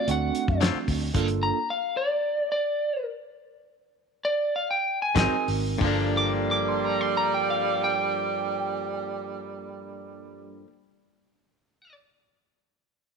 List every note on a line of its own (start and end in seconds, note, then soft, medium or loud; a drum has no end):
0.07 0.30 D2 medium
0.07 1.08 A3 medium
0.07 1.09 C4 medium
0.07 1.09 D4 medium
0.07 1.09 F#4 medium
0.07 0.61 F#5 loud
0.07 closed hi-hat medium
0.35 closed hi-hat medium
0.48 0.70 F#2 medium
0.48 kick medium
0.61 0.77 D3 medium
0.61 0.77 F#3 medium
0.61 0.78 C4 medium
0.61 0.78 F4 medium
0.61 snare loud
0.61 closed hi-hat medium
0.75 muted fingered electric bass stroke soft
0.88 1.10 D2 medium
0.88 kick medium
0.88 open hi-hat medium
1.14 1.50 G1 medium
1.14 1.57 A#3 medium
1.14 1.58 D4 medium
1.14 1.58 F4 medium
1.14 1.58 A4 medium
1.14 kick loud
1.14 closed hi-hat medium
1.14 crash medium
1.28 closed hi-hat soft
1.43 1.68 A#5 medium
1.70 1.96 F5 medium
1.97 2.49 D5 medium
2.52 3.05 D5 loud
4.25 4.53 D5 loud
4.56 4.70 F5 medium
4.71 5.00 G5 medium
5.02 5.16 G#5 medium
5.15 5.29 G#1 loud
5.15 5.35 G#2 medium
5.15 5.35 F#3 medium
5.15 5.47 G#3 medium
5.15 5.77 C4 medium
5.15 5.36 C4 medium
5.15 5.77 D#4 medium
5.15 5.36 D#4 medium
5.15 5.77 F#4 medium
5.15 5.77 A#4 medium
5.15 5.48 G#5 medium
5.15 kick medium
5.15 snare loud
5.15 closed hi-hat medium
5.48 5.75 G#1 medium
5.48 open hi-hat medium
5.78 10.62 G1 medium
5.78 10.64 G2 medium
5.78 10.59 A#3 medium
5.78 10.61 D4 medium
5.78 kick loud
5.78 crash medium
5.82 10.67 F3 medium
5.82 10.63 G3 loud
5.82 10.70 A#3 medium
5.82 10.64 F4 medium
5.82 10.66 A4 medium
5.87 10.72 D4 medium
6.17 6.32 D6 medium
6.51 6.68 D6 medium
6.68 6.85 C6 medium
6.85 7.01 A#5 medium
7.01 7.16 C6 medium
7.17 7.32 A#5 medium
7.34 7.49 G5 medium
7.50 7.82 F5 medium
7.84 11.94 G5 medium